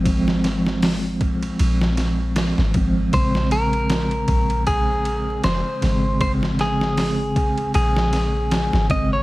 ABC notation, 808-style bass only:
X:1
M:4/4
L:1/16
Q:"Swing 16ths" 1/4=78
K:Bbm
V:1 name="808-style bass" clef=bass
A,,,6 B,,,2 B,,,4- B,,, A,,,3 | B,,,6 B,,,6 F,,, z A,,,2- | A,,,6 B,,,2 B,,,4- B,,, A,,,3 |]